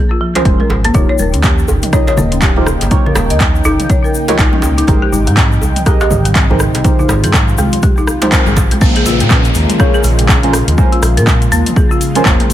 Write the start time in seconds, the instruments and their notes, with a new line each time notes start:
Already playing: synth stab C#4 F4 G#4 A#4 C5
0.11 marimba F4
0.21 marimba F3
0.35 marimba C#4, synth stab C#4 F4 G#4 A#4 C5, closed hi-hat, mid tom, djembe slap
0.45 analog synth bass F1, marimba G#3, synth stab C#4 F4 C5, kick, closed hi-hat
0.60 marimba A#4, mid tom
0.70 analog synth bass G#1, djembe slap, djembe tone
0.84 marimba A#3, closed hi-hat, djembe tone
0.94 analog synth bass D#1, analog synth pad C#3 A#3 D#4 G5, synth stab D#4 F4 G4 A#4 C#5, marimba D#4, kick, closed hi-hat, low conga, shaker
1.09 marimba C#5
1.19 analog synth bass D#1, marimba A#4, high conga, shaker
1.33 analog synth bass D#2, marimba C#4, closed hi-hat, shaker
1.43 marimba G4, kick, clap, closed hi-hat, shaker
1.59 shaker
1.68 analog synth bass G1, djembe tone, djembe bass, shaker
1.83 closed hi-hat, mid tom, shaker
1.93 synth stab D#4 F4 G4 A#4 D#5, marimba C#5, kick, cross-stick, closed hi-hat, djembe tone, shaker
2.07 marimba C#5, djembe slap, shaker
2.17 analog synth bass D#1, marimba A#3, mid tom, djembe tone, high conga, low conga, shaker
2.32 marimba C#4, closed hi-hat, shaker
2.42 marimba G4, kick, clap, closed hi-hat, shaker
2.56 synth stab D#4 F4 G4 A#4 C5, mid tom, djembe bass
2.66 cross-stick, shaker
2.81 analog synth bass G1, closed hi-hat, djembe slap, shaker
2.91 synth stab D#4 F4 G4 A#4 C#5, kick, closed hi-hat, low conga, shaker
3.06 marimba A#4, low conga
3.15 analog synth bass D#1, marimba A#3, cross-stick, djembe slap, high conga, shaker
3.30 analog synth bass D#2, marimba D#5, closed hi-hat, shaker
3.40 kick, clap, closed hi-hat, shaker
3.55 shaker
3.64 analog synth bass G1, marimba D#4, djembe tone, djembe bass, shaker
3.80 closed hi-hat, mid tom, shaker
3.90 marimba C#5, kick, closed hi-hat, shaker
4.04 marimba A#4, shaker
4.14 shaker
4.28 synth stab D#4 F4 G4 A#4 C#5, marimba D#5, closed hi-hat, mid tom, djembe slap, shaker
4.39 analog synth bass A#1, marimba D#4, synth stab F4 G4 A#4 C#5, kick, clap, closed hi-hat, shaker
4.53 marimba C#4, mid tom, high conga
4.62 analog synth bass C#2, djembe slap, djembe tone, shaker
4.78 marimba D#4, closed hi-hat, djembe tone, shaker
4.87 analog synth bass G#1, analog synth pad C3, marimba G#3, synth stab D#4 G4 G#4 A#4 C5, kick, closed hi-hat, low conga, shaker
5.02 marimba G4
5.12 analog synth bass G#1, marimba D#4, high conga, shaker
5.27 analog synth bass G#2, marimba G3, closed hi-hat, shaker
5.37 marimba C4, kick, clap, closed hi-hat, shaker
5.52 shaker
5.62 analog synth bass C2, djembe tone, djembe bass, shaker
5.76 closed hi-hat, mid tom, shaker
5.86 synth stab D#4 G4 G#4 A#4 D#5, marimba G4, kick, cross-stick, closed hi-hat, djembe tone, shaker
6.01 marimba G4, djembe slap, shaker
6.11 analog synth bass G#1, marimba D#3, mid tom, high conga, djembe tone, low conga, shaker
6.25 marimba G3, closed hi-hat, shaker
6.35 marimba C4, kick, clap, closed hi-hat, shaker
6.50 synth stab D#4 G4 G#4 A#4 C5, mid tom, djembe bass
6.59 cross-stick, shaker
6.74 analog synth bass C2, closed hi-hat, djembe slap, shaker
6.84 synth stab D#4 G4 G#4 A#4 C5, analog synth pad F4, kick, closed hi-hat, low conga, shaker
6.99 marimba D#4, low conga, shaker
7.08 analog synth bass G#1, marimba D#3, cross-stick, djembe slap, high conga, shaker
7.23 analog synth bass G#2, marimba G#4, closed hi-hat, high conga, shaker
7.34 kick, cross-stick, clap, closed hi-hat, shaker
7.48 shaker
7.58 analog synth bass C2, marimba G#3, djembe tone, djembe bass, shaker
7.72 closed hi-hat, mid tom, high conga, shaker
7.83 marimba G4, kick, closed hi-hat, shaker
7.97 marimba D#4, djembe tone, shaker
8.07 cross-stick, shaker
8.22 marimba G#3, synth stab D#4 G4 G#4 A#4 C5, closed hi-hat, mid tom, djembe slap, shaker
8.32 marimba C4, kick, clap, closed hi-hat, shaker
8.46 analog synth bass G#1, marimba G#4, mid tom, high conga, shaker
8.56 analog synth bass G#1, kick, djembe slap, djembe tone, shaker
8.71 analog synth bass C2, marimba G#3, closed hi-hat, djembe tone, shaker
8.81 analog synth bass A#1, analog synth pad C#3 G#3 A#3 F4, marimba A#3, synth stab C#4 F4 G#4 A#4 C5, kick, crash, downlifter, shaker
8.96 marimba G#4, closed hi-hat
9.06 analog synth bass A#1, marimba F4, open hi-hat, shaker
9.20 analog synth bass A#2, marimba G#3, closed hi-hat, shaker
9.30 marimba C#4, kick, clap, shaker
9.44 closed hi-hat, shaker
9.55 analog synth bass D#2, open hi-hat, shaker
9.70 closed hi-hat, mid tom, shaker
9.79 synth stab C#4 F4 G#4 A#4 C#5, marimba G#4, kick, cross-stick, shaker
9.94 marimba G#4, shaker
10.04 analog synth bass A#1, marimba F3, mid tom, open hi-hat, shaker
10.19 marimba G#3, closed hi-hat, shaker
10.29 marimba C#4, kick, clap, shaker
10.43 synth stab C#4 F4 G#4 A#4 C5, closed hi-hat, mid tom
10.53 cross-stick, open hi-hat, shaker
10.68 analog synth bass D#2, closed hi-hat, shaker
10.78 synth stab C#4 F4 G#4 A#4 C5, kick, shaker
10.92 marimba F4, closed hi-hat
11.02 analog synth bass A#1, marimba F3, cross-stick, open hi-hat, shaker
11.17 analog synth bass A#2, marimba A#4, closed hi-hat, shaker
11.27 kick, clap, shaker
11.42 closed hi-hat, shaker
11.52 analog synth bass D#2, marimba A#3, open hi-hat, shaker
11.66 closed hi-hat, mid tom, shaker
11.76 marimba G#4, kick, shaker
11.91 marimba F4, shaker
12.01 open hi-hat, shaker
12.15 synth stab C#4 F4 G#4 A#4 C5, marimba A#4, closed hi-hat, mid tom, shaker
12.25 analog synth bass F1, marimba A#3, synth stab C#4 F4, kick, clap, shaker
12.40 marimba G#3, closed hi-hat, mid tom
12.50 analog synth bass G#1, open hi-hat